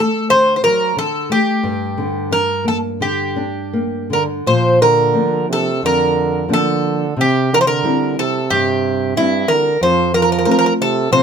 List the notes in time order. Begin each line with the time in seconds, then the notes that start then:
0.00 A3 A4
0.30 D3 C5
0.56 C5
0.64 F#3 A#4
0.97 D3 A4
1.30 A3 G4
1.63 G2
1.98 D3
2.31 D4 A#4
2.65 A#3 A4
3.00 D3 G4
3.36 D4
3.73 A#3
4.10 D3 A#4
4.46 A#2 F3 C5
4.81 D3 A#4
5.14 F3 A#3 D4
5.49 C3 A4
5.83 F2 D3 A#4
6.49 D3 F3 A#3 D4
6.53 A4
7.17 C3
7.21 G4
7.53 D3 A#4
7.58 E3 C5
7.66 D3 A#4
7.84 G3 C4 E4
8.19 C3 A4
8.50 G2 C3 G4
9.16 G2 G3 C4 E4
9.48 D3 A#4
9.81 F2 F3 C5
10.14 F3 A#4
10.22 A#4
10.32 A#4
10.39 A#4
10.45 A3 C4 F4 A#4
10.51 A#4
10.59 A#4
10.66 A#4
10.81 C3 A4
11.11 C3 F3 C5